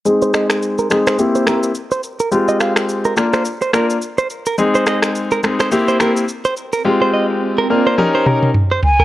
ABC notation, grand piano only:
X:1
M:4/4
L:1/8
Q:"Swing 16ths" 1/4=106
K:Ablyd
V:1 name="Grand piano"
[A,CEA]3 [A,CEA] [B,C=EG] [B,CEG] z2 | [A,CFG]3 [B,DFB] z [B,DFB] z2 | [A,CEA]3 [A,CEA] [B,C=EG] [B,CEG] z2 | [A,CFG]3 [B,DFB] [_DEGB] [DEGB] z2 |]